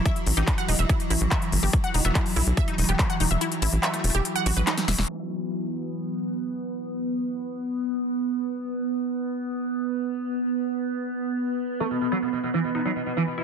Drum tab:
HH |xxoxxxoxxxoxxxoo|xxoxxooxxxoxxxox|xxoxxxoxxxoxxxoo|----------------|
CP |----x-------x---|----x-------x---|----x-------x---|----------------|
SD |----------------|----------------|------------oooo|----------------|
BD |o---o---o---o---|o---o---o---o---|----------------|----------------|

HH |----------------|----------------|----------------|----------------|
CP |----------------|----------------|----------------|----------------|
SD |----------------|----------------|----------------|----------------|
BD |----------------|----------------|----------------|----------------|